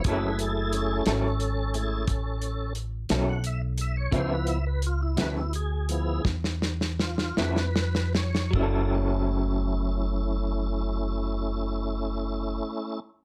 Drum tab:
HH |x-x-x-x-x-x-x-x-x-x-x-x-|x-x-x-x-x-x-------------|------------------------|
SD |------o-----------o-----|------o-----oooooooooooo|------------------------|
BD |o-----------o-----------|o-----------o-----------|o-----------------------|